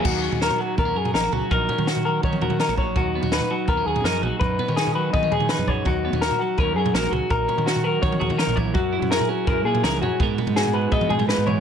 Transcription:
<<
  \new Staff \with { instrumentName = "Clean electric guitar" } { \time 4/4 \key b \major \tempo 4 = 166 fis'4 ais'8 fis'8 ais'8 gis'8 ais'8 fis'8 | ais'4 fis'8 ais'8 cis''8 fis'8 ais'8 cis''8 | fis'4 b'8 fis'8 ais'8 gis'8 ais'8 fis'8 | b'4 gis'8 b'8 dis''8 gis'8 b'8 cis''8 |
fis'4 ais'8 fis'8 ais'8 gis'8 ais'8 fis'8 | ais'4 fis'8 ais'8 cis''8 fis'8 ais'8 cis''8 | fis'4 ais'8 fis'8 ais'8 gis'8 ais'8 fis'8 | r4 gis'8 b'8 dis''8 gis'8 b'8 cis''8 | }
  \new Staff \with { instrumentName = "Clean electric guitar" } { \time 4/4 \key b \major << { r8 cis'8 fis'4 b16 cis'16 ais'8 dis'16 fis'8. | r8 cis'8 fis'4 cis'8 ais'8 dis'16 fis'8. | r8 b16 cis'16 dis'4 b16 cis'16 gis'8 dis'4~ | dis'8 b16 cis'16 dis'4 b16 cis'16 gis'8 dis'4~ |
dis'8 b16 cis'16 fis'4 cis'8 ais'8 fis'4 | r8 cis'8 fis'4 cis'8 gis'16 ais'4~ ais'16 | r8 e'8 gis'4 e'8 gis'8 gis'4 | <gis b fis' ais'>8 b8 fis'4 b8 gis'16 ais'4~ ais'16 | } \\ { <dis fis>4. fis2 fis8 | dis4. fis2 fis8 | dis4. fis2 fis8 | dis4. fis2 fis8 |
dis4. fis2 fis8 | dis4. fis4. dis8 e8 | fis4. cis'2 cis'8 | gis,4. gis4. dis8 e8 | } >> }
  \new Staff \with { instrumentName = "Fingered electric bass" } { \clef bass \time 4/4 \key b \major dis,8. dis,8 r8. dis,8 fis,8 ais,,8 cis,16 r16 | ais,,8 r16 dis4~ dis16 dis8 dis,16 dis8 ais,,8. | dis,8. dis,8 r8. dis,8 dis,8 fis,8 ais,,16 r16 | fis,8 r16 dis4~ dis16 dis8 dis,16 dis8 fis,8. |
dis,8. dis,8 r8. dis,8 fis,8 ais,,8 cis,16 r16 | ais,,8 r16 dis4~ dis16 dis8 dis,16 dis8 ais,,8. | fis,8. fis,8 r8. fis,8 ais,8 cis,8 fis,16 r16 | gis,8 r16 gis,4~ gis,16 gis,8 gis,16 gis,8 gis,8. | }
  \new DrumStaff \with { instrumentName = "Drums" } \drummode { \time 4/4 <cymc bd tomfh>8. tomfh16 sn16 tomfh8. <bd tomfh>8. tomfh16 <sn toml>8 tomfh8 | <bd tomfh>8 tomfh16 tomfh16 sn16 tomfh8. <bd tomfh>16 toml16 tomfh16 tomfh16 <sn toml>16 tomfh16 <bd tomfh>8 | <bd tomfh>8. tomfh16 sn16 tomfh8. <bd tomfh>8. tomfh16 <sn toml>8 tomfh8 | <bd tomfh>8 tomfh16 tomfh16 sn16 tomfh8. <bd tomfh>16 toml16 tomfh16 tomfh16 <sn toml>16 tomfh16 <bd tomfh>8 |
<bd tomfh>8. tomfh16 sn16 tomfh8. <bd tomfh>8. tomfh16 <sn toml>8 tomfh8 | <bd tomfh>8 tomfh16 tomfh16 sn16 tomfh8. <bd tomfh>16 toml16 tomfh16 tomfh16 <sn toml>16 tomfh16 <bd tomfh>8 | <bd tomfh>8. tomfh16 sn16 tomfh8. <bd tomfh>8. tomfh16 <sn toml>8 tomfh8 | <bd tomfh>8 tomfh16 tomfh16 sn16 tomfh8. <bd tomfh>16 toml16 tomfh16 tomfh16 sn8 tomfh8 | }
>>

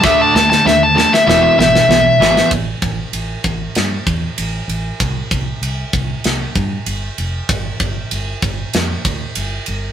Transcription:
<<
  \new Staff \with { instrumentName = "Lead electric guitar" } { \time 4/4 \key a \minor \tempo 4 = 96 e''16 a''16 a''16 a''16 e''16 a''16 a''16 e''16 e''16 e''16 e''4. | r1 | r1 | r1 | }
  \new Staff \with { instrumentName = "Distorted electric guitar" } { \clef bass \time 4/4 \key a \minor <d a d'>8 <d a>8 <d a>8 <d a>8 <e, b, e>8 <e, b,>8 <e, b,>8 <e, b, e>8 | r1 | r1 | r1 | }
  \new Staff \with { instrumentName = "Overdriven electric guitar" } { \clef bass \time 4/4 \key a \minor <d a d'>8 <d a>8 <d a>8 <d a>8 <e, b, e>8 <e, b,>8 <e, b,>8 <e, b, e>8 | r1 | r1 | r1 | }
  \new Staff \with { instrumentName = "Fingered electric bass" } { \clef bass \time 4/4 \key a \minor d,8 d,8 dis,4 e,,8 gis,,8 b,,8 gis,,8 | a,,8 a,,8 a,,8 a,,8 g,8 e,8 a,,8 a,,8 | c,8 c,8 c,8 c,8 c,8 g,8 g,,8 f,,8 | g,,8 g,,8 g,,8 g,,8 f,8 d,8 g,,8 g,,8 | }
  \new DrumStaff \with { instrumentName = "Drums" } \drummode { \time 4/4 <bd sn>8 sn16 sn16 sn8 sn16 sn16 sn8 sn16 sn16 sn8 sn16 sn16 | <bd cymr>8 <bd cymr>8 cymr8 <bd cymr>8 <cymr sn>8 <bd cymr>8 cymr8 cymr8 | <bd cymr>8 <bd cymr>8 cymr8 <bd cymr>8 <cymr sn>8 <bd cymr>8 cymr8 cymr8 | <bd cymr>8 <bd cymr>8 cymr8 <bd cymr>8 <cymr sn>8 <bd cymr>8 cymr8 cymr8 | }
>>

